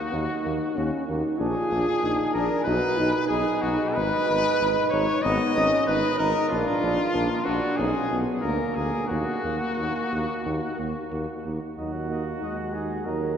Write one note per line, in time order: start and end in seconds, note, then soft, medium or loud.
0.00 0.15 A#3 medium
0.00 1.04 F#4 medium
0.12 0.27 D#2 medium
0.12 0.26 A#3 medium
0.12 0.77 D#4 medium
0.44 0.59 D#2 medium
0.44 0.58 A#3 medium
0.75 0.91 D#2 medium
0.75 0.90 A#3 medium
0.75 1.06 C#4 medium
1.07 1.23 D#2 medium
1.07 1.22 A#3 medium
1.07 1.41 D#4 medium
1.38 1.54 A#1 medium
1.38 1.53 D4 medium
1.38 2.02 F4 loud
1.38 2.29 G#4 loud
1.38 2.30 G#4 loud
1.71 1.86 A#1 medium
1.71 1.85 D4 medium
2.03 2.17 A#1 medium
2.03 2.17 D4 medium
2.03 2.34 D#4 medium
2.33 2.49 A#1 medium
2.33 2.68 D4 medium
2.33 2.49 D4 medium
2.33 2.63 A#4 loud
2.33 2.67 A#4 medium
2.64 2.81 B1 loud
2.64 2.80 D#4 medium
2.64 2.99 F#4 loud
2.64 3.27 B4 loud
2.64 3.29 B4 loud
2.98 3.12 B1 medium
2.98 5.23 D#4 loud
2.98 3.12 D#4 medium
3.28 3.45 B1 medium
3.28 3.45 D#4 medium
3.28 3.63 G#4 loud
3.28 3.61 G#4 loud
3.62 3.78 B1 medium
3.62 3.78 D#4 medium
3.62 3.95 F#4 loud
3.62 3.96 F#4 medium
3.94 4.10 G#1 medium
3.94 4.11 D#4 medium
3.94 4.89 B4 loud
3.94 4.93 B4 loud
4.28 4.43 G#1 medium
4.28 4.42 D#4 medium
4.60 4.75 G#1 medium
4.60 4.74 D#4 medium
4.89 5.07 G#1 medium
4.89 5.06 D#4 medium
4.89 5.24 C#5 loud
4.89 5.23 C#5 loud
5.22 5.39 G#1 loud
5.22 5.55 B3 loud
5.22 5.38 D#4 medium
5.22 5.86 D#5 loud
5.22 5.88 D#5 loud
5.56 5.70 G#1 medium
5.56 5.87 C#4 loud
5.56 5.70 D#4 medium
5.87 6.02 G#1 medium
5.87 6.01 D#4 medium
5.87 6.28 D#4 loud
5.87 6.18 B4 loud
6.18 6.34 G#1 medium
6.18 6.34 D#4 medium
6.18 6.49 A#4 loud
6.18 6.50 A#4 loud
6.49 6.66 A#1 medium
6.49 6.65 D4 medium
6.49 7.16 D4 loud
6.49 7.46 F4 loud
6.49 7.29 F4 loud
6.83 6.97 A#1 medium
6.83 6.97 D4 medium
7.14 7.29 A#1 medium
7.14 7.47 A#3 medium
7.14 7.28 D4 medium
7.45 7.61 A#1 medium
7.45 7.79 D4 medium
7.45 7.61 D4 medium
7.45 7.78 F#4 medium
7.45 7.80 F#4 medium
7.77 7.93 B1 medium
7.77 8.09 C#4 medium
7.77 7.92 D#4 medium
7.77 8.19 G#4 loud
7.77 8.20 G#4 medium
8.10 8.26 B1 medium
8.10 8.42 B3 medium
8.10 8.24 D#4 medium
8.41 8.58 D2 medium
8.41 8.57 A#3 medium
8.41 9.08 A#3 medium
8.41 8.76 A#4 medium
8.41 8.73 A#4 medium
8.75 8.92 D2 medium
8.75 8.90 A#3 medium
8.75 9.07 G#4 medium
8.75 9.11 G#4 medium
9.08 9.25 D#2 medium
9.08 9.24 A#3 medium
9.08 11.41 A#3 medium
9.08 11.06 F#4 medium
9.08 11.11 F#4 medium
9.43 9.59 D#2 medium
9.43 9.58 A#3 medium
9.77 9.93 D#2 medium
9.77 9.92 A#3 medium
10.11 10.26 D#2 medium
10.11 10.26 A#3 medium
10.44 10.60 D#2 medium
10.44 10.59 A#3 medium
10.77 10.93 D#2 medium
10.77 10.92 A#3 medium
11.10 11.27 D#2 medium
11.10 11.25 A#3 medium
11.43 11.60 D#2 medium
11.43 11.58 A#3 medium
11.77 12.35 D#2 medium
11.77 12.11 F#3 medium
11.77 11.92 D#4 medium
11.77 12.75 F#4 medium
11.77 11.92 D#5 soft
12.09 12.44 A#3 medium
12.09 12.24 D#4 medium
12.09 12.25 D#5 soft
12.41 12.99 D#2 medium
12.41 13.08 G#3 medium
12.41 12.56 D#4 soft
12.41 12.57 D#5 medium
12.73 12.88 D#4 medium
12.73 13.07 G#4 medium
12.73 12.88 D#5 soft
13.05 13.37 D#2 medium
13.05 13.37 F#3 medium
13.05 13.21 D#4 medium
13.05 13.37 A#4 medium
13.05 13.21 D#5 soft